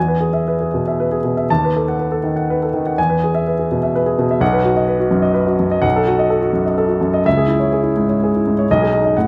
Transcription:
0.00 1.44 E2 medium
0.00 0.16 G#5 medium
0.08 0.29 B4 soft
0.20 0.42 G#4 soft
0.33 0.54 E5 soft
0.48 0.68 B4 soft
0.61 0.81 G#4 soft
0.74 1.15 B2 soft
0.88 1.07 E5 soft
1.00 1.20 B4 medium
1.11 1.32 G#4 soft
1.24 1.44 B2 soft
1.37 1.49 E5 soft
1.50 2.94 D#2 medium
1.50 1.70 A5 medium
1.65 1.83 B4 soft
1.76 1.95 A4 soft
1.88 2.07 F#5 soft
1.99 2.19 B4 soft
2.12 2.32 A4 soft
2.24 2.63 D#3 soft
2.36 2.56 F#5 soft
2.50 2.69 B4 medium
2.63 2.81 A4 soft
2.74 2.93 D#3 medium
2.87 2.98 F#5 soft
2.98 4.38 E2 medium
2.98 3.18 G#5 medium
3.10 3.29 B4 medium
3.24 3.42 G#4 soft
3.35 3.54 E5 medium
3.47 3.66 B4 soft
3.59 3.78 G#4 soft
3.71 3.90 B2 medium
3.83 4.02 E5 soft
3.96 4.14 B4 medium
4.06 4.25 G#4 soft
4.18 4.37 B2 medium
4.31 4.42 E5 medium
4.41 5.80 B1 medium
4.41 4.60 F#5 medium
4.53 4.72 B4 medium
4.65 4.84 F#4 medium
4.77 4.96 D#5 soft
4.88 5.08 B4 medium
5.00 5.19 F#4 soft
5.11 5.31 F#2 medium
5.22 5.43 D#5 medium
5.34 5.54 B4 medium
5.46 5.66 F#4 medium
5.60 5.79 F#2 medium
5.71 5.84 D#5 medium
5.82 7.21 B1 medium
5.82 6.02 F#5 medium
5.96 6.15 A4 medium
6.07 6.27 F#4 medium
6.19 6.38 D#5 medium
6.30 6.50 A4 medium
6.42 6.62 F#4 medium
6.53 6.74 F#2 soft
6.66 6.85 D#5 soft
6.78 6.97 A4 medium
6.88 7.08 F#4 soft
7.01 7.20 F#2 medium
7.14 7.25 D#5 medium
7.25 8.63 C#2 medium
7.25 7.44 E5 medium
7.37 7.56 G#4 medium
7.47 7.67 E4 medium
7.60 7.79 C#5 soft
7.72 7.92 G#4 medium
7.83 8.03 E4 medium
7.97 8.17 G#2 medium
8.09 8.28 C#5 soft
8.23 8.41 G#4 medium
8.36 8.53 E4 soft
8.47 8.64 G#2 medium
8.59 8.69 C#5 medium
8.71 9.15 B1 medium
8.71 8.88 D#5 medium
8.82 9.00 G#4 medium
8.93 9.11 D#4 medium
9.05 9.16 D#5 soft
9.17 9.27 A2 medium
9.17 9.27 F#5 medium

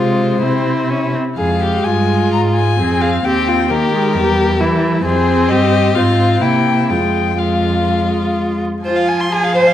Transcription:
0.00 0.41 C3 soft
0.00 0.44 G#3 soft
0.00 0.42 F4 soft
0.00 0.90 C5 soft
0.42 1.16 C3 soft
0.42 0.92 C4 soft
0.42 1.16 E4 soft
0.90 1.14 C#4 soft
1.14 1.22 C4 soft
1.37 1.82 F2 soft
1.37 2.74 G#3 soft
1.37 1.60 G#4 soft
1.37 1.86 F5 soft
1.64 1.88 G4 soft
1.84 2.32 G2 soft
1.84 2.81 F4 soft
1.84 2.32 G#5 medium
2.33 2.81 G#2 soft
2.33 2.41 A#5 soft
2.55 3.03 G#5 medium
2.78 3.24 F2 soft
2.78 3.23 C4 soft
2.78 3.01 G#4 soft
3.02 3.10 G#4 soft
3.02 3.27 F5 medium
3.24 3.72 D#2 soft
3.24 3.71 C4 soft
3.24 3.50 G4 soft
3.24 3.72 G5 medium
3.48 3.70 F4 soft
3.70 4.17 D#3 soft
3.70 3.93 A#3 soft
3.70 4.15 G4 soft
3.70 4.82 A#4 medium
3.93 4.17 G#3 soft
4.15 4.62 E2 soft
4.15 4.59 G3 soft
4.15 4.63 G4 soft
4.60 5.03 E3 soft
4.60 5.03 G3 soft
4.60 5.05 E4 soft
5.03 5.51 F2 soft
5.03 5.92 C4 medium
5.03 5.52 G#4 soft
5.03 5.50 C5 medium
5.49 5.95 G2 soft
5.49 5.97 G4 soft
5.49 5.96 D#5 medium
5.95 6.41 G#2 soft
5.95 6.43 C4 soft
5.95 6.42 F4 soft
5.95 6.43 F5 medium
6.42 6.92 C3 soft
6.42 6.92 A#3 soft
6.42 6.91 E4 soft
6.42 6.89 G5 medium
6.90 8.64 F2 soft
6.90 7.39 G#3 soft
6.90 7.39 F4 soft
6.90 7.40 G5 soft
7.39 8.62 G#3 soft
7.39 8.62 F4 soft
7.39 8.37 F5 soft
8.85 9.74 F3 soft
8.85 9.29 F4 medium
8.85 8.98 C5 soft
8.85 9.74 G#5 soft
8.96 9.10 F5 soft
9.08 9.22 G#5 soft
9.20 9.34 C6 soft
9.32 9.55 G#4 medium
9.32 9.45 G#5 soft
9.44 9.57 F5 soft
9.55 9.68 C5 soft
9.55 9.74 C5 medium
9.67 9.74 F5 soft

